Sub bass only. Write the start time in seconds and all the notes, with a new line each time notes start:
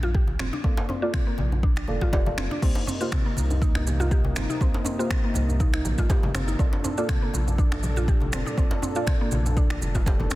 Already playing: A#1
0.39 F1
0.64 A#1
1.39 A#1
1.88 F1
2.13 F1
2.26 F1
2.38 F1
2.62 C2
3.37 C2
4.36 G1
4.61 C2
5.35 C2
5.85 A#1
6.34 G1
6.59 A#1
7.34 A#1
8.33 F1
8.58 A#1
9.32 A#1
9.82 F1
10.31 F1